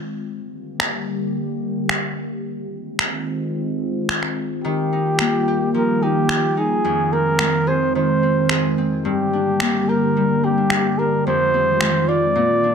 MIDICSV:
0, 0, Header, 1, 5, 480
1, 0, Start_track
1, 0, Tempo, 550459
1, 211, Time_signature, 4, 2, 24, 8
1, 11115, End_track
2, 0, Start_track
2, 0, Title_t, "Flugelhorn"
2, 0, Program_c, 0, 56
2, 4047, Note_on_c, 0, 67, 82
2, 4974, Note_off_c, 0, 67, 0
2, 5022, Note_on_c, 0, 70, 73
2, 5257, Note_on_c, 0, 67, 82
2, 5270, Note_off_c, 0, 70, 0
2, 5744, Note_on_c, 0, 68, 83
2, 5757, Note_off_c, 0, 67, 0
2, 6215, Note_on_c, 0, 70, 88
2, 6229, Note_off_c, 0, 68, 0
2, 6695, Note_on_c, 0, 72, 93
2, 6708, Note_off_c, 0, 70, 0
2, 6933, Note_off_c, 0, 72, 0
2, 6938, Note_on_c, 0, 72, 85
2, 7620, Note_off_c, 0, 72, 0
2, 7900, Note_on_c, 0, 67, 78
2, 8624, Note_on_c, 0, 70, 85
2, 8637, Note_off_c, 0, 67, 0
2, 9106, Note_on_c, 0, 67, 83
2, 9119, Note_off_c, 0, 70, 0
2, 9577, Note_on_c, 0, 70, 79
2, 9590, Note_off_c, 0, 67, 0
2, 9814, Note_off_c, 0, 70, 0
2, 9827, Note_on_c, 0, 72, 99
2, 10538, Note_on_c, 0, 74, 93
2, 10551, Note_off_c, 0, 72, 0
2, 11115, Note_off_c, 0, 74, 0
2, 11115, End_track
3, 0, Start_track
3, 0, Title_t, "Harp"
3, 0, Program_c, 1, 46
3, 4050, Note_on_c, 1, 51, 71
3, 4295, Note_on_c, 1, 63, 52
3, 4534, Note_on_c, 1, 58, 53
3, 4776, Note_on_c, 1, 67, 60
3, 5009, Note_on_c, 1, 53, 59
3, 5249, Note_off_c, 1, 63, 0
3, 5253, Note_on_c, 1, 63, 55
3, 5725, Note_off_c, 1, 63, 0
3, 5729, Note_on_c, 1, 63, 52
3, 5969, Note_on_c, 1, 41, 70
3, 6214, Note_on_c, 1, 60, 51
3, 6451, Note_on_c, 1, 56, 54
3, 6503, Note_off_c, 1, 67, 0
3, 6688, Note_on_c, 1, 68, 62
3, 6932, Note_off_c, 1, 51, 0
3, 6935, Note_on_c, 1, 51, 64
3, 6975, Note_off_c, 1, 56, 0
3, 7173, Note_off_c, 1, 60, 0
3, 7176, Note_on_c, 1, 60, 53
3, 7338, Note_off_c, 1, 58, 0
3, 7412, Note_off_c, 1, 68, 0
3, 7416, Note_on_c, 1, 68, 57
3, 7653, Note_off_c, 1, 60, 0
3, 7656, Note_on_c, 1, 60, 53
3, 7890, Note_on_c, 1, 43, 68
3, 7934, Note_off_c, 1, 41, 0
3, 7934, Note_off_c, 1, 51, 0
3, 8137, Note_on_c, 1, 62, 49
3, 8382, Note_on_c, 1, 58, 59
3, 8624, Note_on_c, 1, 67, 60
3, 8676, Note_off_c, 1, 68, 0
3, 8864, Note_on_c, 1, 55, 62
3, 9094, Note_off_c, 1, 60, 0
3, 9098, Note_on_c, 1, 60, 54
3, 9218, Note_off_c, 1, 62, 0
3, 9221, Note_on_c, 1, 62, 47
3, 9333, Note_off_c, 1, 67, 0
3, 9336, Note_on_c, 1, 67, 60
3, 9579, Note_off_c, 1, 62, 0
3, 9582, Note_on_c, 1, 62, 54
3, 9737, Note_off_c, 1, 63, 0
3, 9824, Note_on_c, 1, 41, 69
3, 9854, Note_off_c, 1, 43, 0
3, 9855, Note_off_c, 1, 55, 0
3, 10058, Note_off_c, 1, 60, 0
3, 10062, Note_on_c, 1, 60, 53
3, 10299, Note_on_c, 1, 56, 58
3, 10352, Note_off_c, 1, 67, 0
3, 10537, Note_on_c, 1, 65, 61
3, 10677, Note_off_c, 1, 53, 0
3, 10773, Note_on_c, 1, 46, 71
3, 10814, Note_off_c, 1, 41, 0
3, 10814, Note_off_c, 1, 56, 0
3, 11015, Note_off_c, 1, 62, 0
3, 11018, Note_on_c, 1, 62, 53
3, 11115, Note_off_c, 1, 46, 0
3, 11115, Note_off_c, 1, 58, 0
3, 11115, Note_off_c, 1, 60, 0
3, 11115, Note_off_c, 1, 62, 0
3, 11115, Note_off_c, 1, 65, 0
3, 11115, End_track
4, 0, Start_track
4, 0, Title_t, "Ambient pad"
4, 0, Program_c, 2, 92
4, 0, Note_on_c, 2, 51, 71
4, 0, Note_on_c, 2, 56, 68
4, 0, Note_on_c, 2, 60, 72
4, 0, Note_on_c, 2, 65, 87
4, 181, Note_off_c, 2, 51, 0
4, 192, Note_off_c, 2, 60, 0
4, 194, Note_off_c, 2, 65, 0
4, 195, Note_off_c, 2, 56, 0
4, 200, Note_on_c, 2, 67, 84
4, 202, Note_on_c, 2, 58, 68
4, 207, Note_on_c, 2, 50, 69
4, 208, Note_on_c, 2, 55, 70
4, 2106, Note_off_c, 2, 67, 0
4, 2107, Note_off_c, 2, 58, 0
4, 2110, Note_off_c, 2, 50, 0
4, 2110, Note_off_c, 2, 55, 0
4, 2133, Note_on_c, 2, 65, 86
4, 2134, Note_on_c, 2, 51, 69
4, 2138, Note_on_c, 2, 60, 73
4, 2142, Note_on_c, 2, 56, 67
4, 4033, Note_off_c, 2, 51, 0
4, 4035, Note_off_c, 2, 60, 0
4, 4037, Note_off_c, 2, 56, 0
4, 4043, Note_on_c, 2, 51, 78
4, 4046, Note_on_c, 2, 55, 71
4, 4050, Note_on_c, 2, 58, 65
4, 5949, Note_off_c, 2, 55, 0
4, 5951, Note_off_c, 2, 58, 0
4, 5968, Note_on_c, 2, 60, 67
4, 5975, Note_on_c, 2, 56, 66
4, 7852, Note_off_c, 2, 51, 0
4, 7857, Note_off_c, 2, 65, 0
4, 7870, Note_off_c, 2, 60, 0
4, 7874, Note_off_c, 2, 56, 0
4, 7895, Note_on_c, 2, 58, 67
4, 7899, Note_on_c, 2, 50, 75
4, 7901, Note_on_c, 2, 67, 85
4, 7903, Note_on_c, 2, 55, 72
4, 9794, Note_off_c, 2, 58, 0
4, 9796, Note_off_c, 2, 50, 0
4, 9797, Note_off_c, 2, 67, 0
4, 9798, Note_off_c, 2, 55, 0
4, 9803, Note_on_c, 2, 65, 83
4, 9805, Note_on_c, 2, 60, 67
4, 9808, Note_on_c, 2, 51, 72
4, 9810, Note_on_c, 2, 56, 65
4, 10758, Note_off_c, 2, 60, 0
4, 10760, Note_off_c, 2, 51, 0
4, 10761, Note_off_c, 2, 56, 0
4, 10773, Note_on_c, 2, 53, 65
4, 10774, Note_on_c, 2, 58, 70
4, 10775, Note_on_c, 2, 50, 70
4, 11115, Note_off_c, 2, 50, 0
4, 11115, Note_off_c, 2, 53, 0
4, 11115, Note_off_c, 2, 58, 0
4, 11115, Note_off_c, 2, 65, 0
4, 11115, End_track
5, 0, Start_track
5, 0, Title_t, "Drums"
5, 697, Note_on_c, 9, 26, 78
5, 784, Note_off_c, 9, 26, 0
5, 1651, Note_on_c, 9, 26, 78
5, 1738, Note_off_c, 9, 26, 0
5, 2607, Note_on_c, 9, 26, 83
5, 2694, Note_off_c, 9, 26, 0
5, 3567, Note_on_c, 9, 26, 79
5, 3654, Note_off_c, 9, 26, 0
5, 3686, Note_on_c, 9, 26, 23
5, 3773, Note_off_c, 9, 26, 0
5, 4524, Note_on_c, 9, 26, 73
5, 4611, Note_off_c, 9, 26, 0
5, 5486, Note_on_c, 9, 26, 78
5, 5573, Note_off_c, 9, 26, 0
5, 6443, Note_on_c, 9, 26, 73
5, 6530, Note_off_c, 9, 26, 0
5, 7407, Note_on_c, 9, 26, 77
5, 7494, Note_off_c, 9, 26, 0
5, 8372, Note_on_c, 9, 26, 82
5, 8460, Note_off_c, 9, 26, 0
5, 9332, Note_on_c, 9, 26, 80
5, 9420, Note_off_c, 9, 26, 0
5, 10295, Note_on_c, 9, 26, 83
5, 10382, Note_off_c, 9, 26, 0
5, 11115, End_track
0, 0, End_of_file